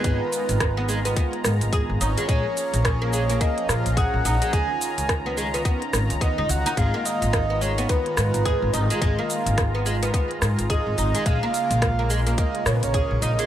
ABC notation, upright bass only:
X:1
M:4/4
L:1/16
Q:"Swing 16ths" 1/4=107
K:G#dor
V:1 name="Upright bass" clef=bass
G,,, z2 G,,,4- G,,, z2 G,, G,,, z G,,, G,,, z | A,,, z2 A,,,4- A,,, z2 A,, A,,, z A,,, A,,, z | C,, z2 C,,4- C,, z2 G,,, C,, z C,, C,, z | G,,, z2 G,,,4- G,,, z2 G,, G,,, z G,,, G,,, z |
G,,, z2 G,,,4- G,,, z2 G,, G,,, z G,,, G,,, z | A,,, z2 A,,,4- A,,, z2 A,, A,,, z A,,, A,,, z |]